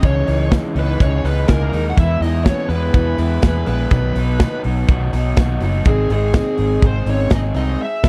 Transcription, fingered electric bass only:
0.03 C#2
0.28 C#2
0.75 C#2
1.00 C#2
1.24 C#2
1.49 C#2
1.73 D#2
1.97 E2
2.20 E2
2.69 E2
2.94 E2
3.18 E2
3.43 E2
3.67 A#1
3.91 B1
4.16 B1
4.65 B1
4.89 B1
5.13 B1
5.37 B1
5.61 F#1
5.85 G#1
6.10 G#1
6.59 G#1
6.82 G#1
7.06 G#1
7.30 G#1
7.55 C2
8.04 C#2

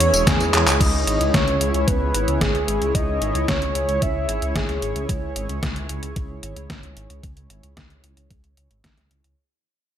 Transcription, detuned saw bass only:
0.00 E2
0.14 E1
0.27 E2
0.40 E2
0.54 E2
0.67 C#2
0.81 C#2
0.94 C#2
1.07 G#1
1.20 C#2
1.34 C#2
1.48 C#2
1.61 C#2
1.74 C#2
1.88 C#2
2.01 C#2
2.15 G#1
2.28 C#2
2.41 G#1
2.54 C#2
2.68 G#1
2.82 C#2
2.95 C#2
3.08 C#2
3.22 G#1
3.35 C#2
3.48 C#2
3.62 C#2
3.75 C#2
3.89 C#2
4.02 C#2
4.15 C#2
4.29 G#1
4.42 C#2
4.56 G#1
4.69 C#2
4.82 G#1
4.96 C#2
5.09 C#2
5.23 C#2
5.36 G#1
5.50 C#2
5.63 C#2
5.76 C#2
5.90 C#2
6.03 C#2
6.16 C#2
6.30 C#2
6.43 G#1
6.57 C#2
6.70 G#1
6.83 C#2
6.97 G#1
7.10 C#2
7.24 C#2
7.37 C#2
7.50 G#1
7.64 C#2
7.77 C#2
7.91 C#2
8.04 C#2
8.17 C#2
8.31 C#2
8.44 C#2
8.57 C#2
8.71 G#1
8.84 G#1
8.98 C#2
9.11 C#2
9.24 C#2

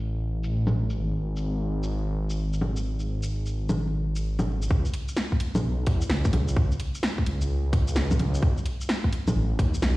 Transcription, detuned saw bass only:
Already playing: A1
0.98 G#1
4.71 C#2
5.63 B1
5.87 E2
6.10 C#2
6.33 C#2
6.57 C#2
7.26 C#2
7.96 C#2
8.43 B1
9.36 A1
9.59 D#2
9.82 B1

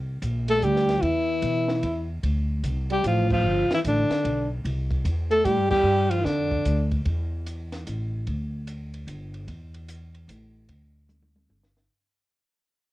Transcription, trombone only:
0.49 A3
0.61 G3
1.00 E3
2.91 G3
3.05 F3
3.31 F3
3.73 E3
3.86 D3
5.31 A3
5.44 G3
5.69 G3
6.10 F3
6.24 D3

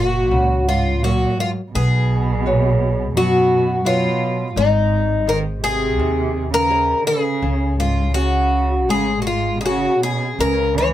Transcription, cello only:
Already playing: A#2
0.66 G#2
1.01 A#2
1.36 G#2
1.72 B2
3.15 B2
3.86 B2
4.55 G#2
5.26 D#3
5.61 C3
6.50 C#3
7.03 C#3
7.77 G#2
8.13 C#3
8.86 C#3
9.18 A#2
9.25 G#2
9.56 B2
9.63 C#3
10.00 B2
10.37 C#3
10.74 E3

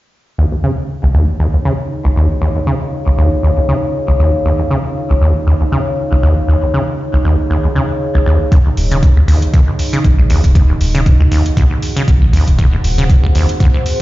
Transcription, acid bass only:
0.38 D#2
0.52 D#2
0.64 C#3
1.03 C#2
1.14 D#2
1.40 D#2
1.54 D#2
1.65 C#3
2.05 C#2
2.16 D#2
2.42 D#2
2.56 D#2
2.67 C#3
3.07 C#2
3.18 D#2
3.43 D#2
3.57 D#2
3.69 C#3
4.08 C#2
4.20 D#2
4.45 D#2
4.59 D#2
4.71 C#3
5.10 C#2
5.22 D#2
5.47 D#2
5.61 D#2
5.72 C#3
6.12 C#2
6.23 D#2
6.48 D#2
6.63 D#2
6.74 C#3
7.13 C#2
7.25 D#2
7.50 D#2
7.64 D#2
7.75 C#3
8.15 C#2
8.26 D#2
8.52 D#2
8.66 D#2
8.91 C#3
9.17 C#2
9.28 D#2
9.53 D#2
9.68 D#2
9.93 C#3
10.18 C#2
10.30 D#2
10.55 D#2
10.69 D#2
10.95 C#3
11.20 C#2
11.31 D#2
11.57 D#2
11.71 D#2
11.96 C#3
12.22 C#2
12.33 D#2
12.58 D#2
12.73 D#2
12.98 C#3
13.24 C#2
13.35 D#2
13.60 D#2
13.74 D#2

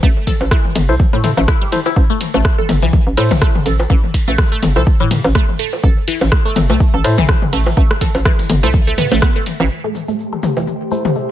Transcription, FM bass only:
0.03 A1
0.41 A1
0.75 G1
0.89 C2
1.13 A2
1.37 A1
1.96 A1
2.34 A1
2.69 G1
2.83 C2
3.07 A1
3.17 A2
3.31 A1
3.66 A1
3.90 A1
4.28 A1
4.62 G1
4.76 C2
5.00 A2
5.25 A1
5.83 A1
6.21 A1
6.56 G1
6.70 C2
6.94 A1
7.04 A2
7.18 A1
7.53 A1
7.77 A1
8.15 A1
8.50 G1
8.63 C2
8.98 A2
9.12 A1
9.60 A1

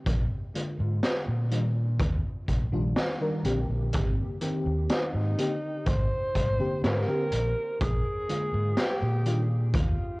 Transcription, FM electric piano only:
0.54 D3 G#3 A#3 F4
1.51 D#3 G3 D4 F4
2.72 D#3 G3 D4 F4
3.20 D#3 G3 D4 A#4
3.44 D3 A#3 C4 G4
4.41 D#3 A#3 C4 G4
5.38 D3 A#3 C4 G4
6.59 D3 A#3 C4 G4
7.07 D3 A#3 C4 G4
8.28 D3 G#3 A#3 F4
9.25 D#3 G3 D4 F4

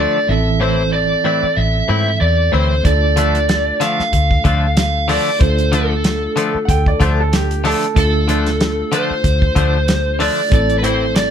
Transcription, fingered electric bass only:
0.29 A1
1.43 muted fingered electric bass stroke
1.57 A1
1.89 G#2
2.21 E2
2.53 D2
2.85 D2
4.00 muted fingered electric bass stroke
4.13 D2
4.45 D2
5.41 D2
6.55 muted fingered electric bass stroke
6.68 D2
7.01 D2
7.97 D2
9.10 muted fingered electric bass stroke
9.24 D2
9.56 D2
10.52 A1

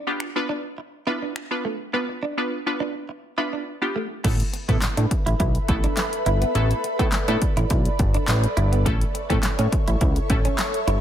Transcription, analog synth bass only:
4.24 A1
4.69 A2
4.82 A2
4.97 A2
5.26 A1
5.40 B1
5.69 A1
6.26 G1
6.55 A1
6.99 A2
7.13 A2
7.28 A2
7.57 A1
7.70 B1
7.99 G1
8.28 A1
8.57 G1
8.86 A1
9.30 A2
9.44 A2
9.59 A2
9.88 A1
10.01 C#2
10.30 A1
10.88 G1

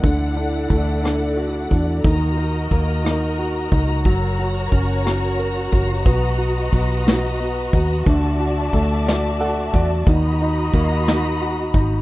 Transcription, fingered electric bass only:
0.04 D2
0.70 D2
1.71 E2
2.04 D#2
2.71 D#2
3.72 C#2
4.05 F#1
4.72 F#1
5.72 F#1
6.06 B1
6.73 B1
7.73 D#2
8.06 D2
8.73 D2
9.73 E2
10.07 D#2
10.74 D#2
11.74 G#1

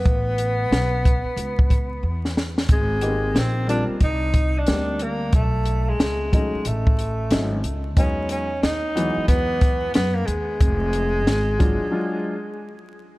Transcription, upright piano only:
3.01 A#3 B3 D#4 G4
3.09 C4
3.67 G3 A#3 C4 F4
4.67 G3 A#3 B3 G4
4.74 C4
6.32 F#3 A3 C#4 D#4
7.31 F#3 A3 C#4 D#4
7.97 F#3 G#3 B3 D#4
8.95 E3 F#3 G#3 B3
11.59 F#3 G#3 D4 F4
11.91 F#3 G#3 D4 F4

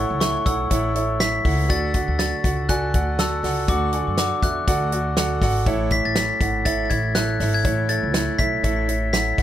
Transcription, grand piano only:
Already playing: A2 E4 A4 C#5 E5 F#5
0.21 E4 A4 C#5 E5
0.46 E4 A4 C#5 F#5
0.70 E4 A4 C#5 E5
0.95 E4 A4 C#5 E5
1.19 E4 A4 C#5 E5
1.44 E4 A4 C#5 F#5
1.69 D3 F#4 A4 D5 F#5
1.94 F#4 A4 D5 F#5
2.19 F#4 A4 D5 F#5
2.44 F#4 A4 D5 F#5
2.69 F#4 A4 D5 G#5
2.94 F#4 A4 D5 F#5
3.19 F#4 A4 D5 A5
3.43 F#4 A4 D5 F#5
3.68 D3 F#4 A4 D5 F#5
3.93 F#4 A4 D5 G#5
4.18 F#4 A4 D5 F#5
4.43 F#4 A4 D5 E5
4.67 F#4 A4 D5 F#5
4.92 F#4 A4 D5 F#5
5.17 F#4 A4 D5 F#5
5.42 F#4 A4 D5 F#5
5.66 A2 E4 A4 C#5 E5
5.91 E4 A4 C#5 E5
6.16 E4 A4 C#5 E5
6.41 E4 A4 C#5 F#5
6.65 E4 A4 C#5 E5
6.90 E4 A4 C#5 E5
7.15 E4 A4 C#5 E5
7.40 E4 A4 C#5 E5
7.64 A2 E4 A4 C#5 E5
7.89 E4 A4 C#5 E5
8.14 E4 A4 C#5 E5
8.39 E4 A4 C#5 E5
8.63 E4 A4 C#5 E5
8.88 E4 A4 C#5 E5
9.13 E4 A4 C#5 F#5
9.38 E4 A4 C#5 F#5

